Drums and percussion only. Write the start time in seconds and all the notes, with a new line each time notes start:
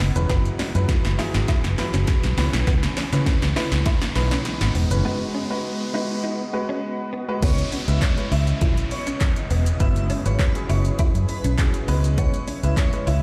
0.00 snare, open hi-hat, shaker
0.16 closed hi-hat, shaker
0.29 kick, snare, closed hi-hat, shaker
0.45 closed hi-hat, shaker
0.59 snare, open hi-hat, shaker
0.75 closed hi-hat, shaker
0.89 kick, snare, closed hi-hat, shaker
1.05 snare, closed hi-hat, shaker
1.19 snare, open hi-hat, shaker
1.34 snare, closed hi-hat, shaker
1.48 kick, snare, closed hi-hat, shaker
1.64 snare, closed hi-hat, shaker
1.78 snare, open hi-hat, shaker
1.94 snare, closed hi-hat, shaker
2.07 kick, snare, closed hi-hat, shaker
2.23 snare, closed hi-hat, shaker
2.38 snare, open hi-hat, shaker
2.53 snare, closed hi-hat, shaker
2.67 kick, snare, closed hi-hat, shaker
2.83 snare, closed hi-hat, shaker
2.97 snare, open hi-hat, shaker
3.13 snare, closed hi-hat, shaker
3.26 kick, snare, closed hi-hat, shaker
3.42 snare, closed hi-hat, shaker
3.56 snare, open hi-hat, shaker
3.72 snare, closed hi-hat, shaker
3.86 kick, snare, closed hi-hat, shaker
4.02 snare, closed hi-hat, shaker
4.16 snare, open hi-hat, shaker
4.31 snare, closed hi-hat, shaker
4.45 snare, closed hi-hat, shaker
4.61 snare, closed hi-hat, shaker
4.75 open hi-hat, shaker
4.91 closed hi-hat, shaker
7.43 kick, closed hi-hat, crash, shaker
7.58 closed hi-hat, shaker
7.72 open hi-hat, shaker
7.88 closed hi-hat, shaker
8.02 kick, snare, clap, closed hi-hat, shaker
8.18 closed hi-hat, shaker
8.32 open hi-hat, shaker
8.47 closed hi-hat, shaker
8.61 kick, closed hi-hat, shaker
8.77 closed hi-hat, shaker
8.91 open hi-hat, shaker
9.07 closed hi-hat, shaker
9.21 kick, snare, clap, closed hi-hat, shaker
9.36 closed hi-hat, shaker
9.51 open hi-hat, shaker
9.66 closed hi-hat, shaker
9.80 kick, closed hi-hat, shaker
9.96 closed hi-hat, shaker
10.10 open hi-hat, shaker
10.26 closed hi-hat, shaker
10.39 kick, snare, clap, closed hi-hat, shaker
10.55 closed hi-hat, shaker
10.70 open hi-hat, shaker
10.85 closed hi-hat, shaker
10.99 kick, closed hi-hat, shaker
11.15 closed hi-hat, shaker
11.29 open hi-hat, shaker
11.44 closed hi-hat, shaker
11.58 kick, snare, clap, closed hi-hat, shaker
11.74 closed hi-hat, shaker
11.88 open hi-hat, shaker
12.04 closed hi-hat, shaker
12.18 kick, closed hi-hat, shaker
12.34 closed hi-hat, shaker
12.48 open hi-hat, shaker
12.63 closed hi-hat, shaker
12.77 kick, snare, clap, closed hi-hat, shaker
12.93 closed hi-hat, shaker
13.07 open hi-hat, shaker